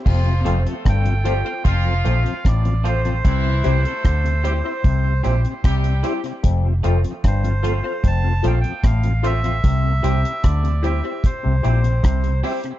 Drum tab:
CC |x---------------|----------------|----------------|----------------|
HH |--xxxxx-x-xxxxxx|x-xxxxx-x-xxxxxx|x-xxxxx-x-xxxxxx|x-xxxxx-x-xxxxox|
SD |----r-------r---|----r-------r---|----r-------r---|----r-------r---|
BD |o---o---o---o---|o---o---o---o---|o---o---o---o---|o---o---o---o---|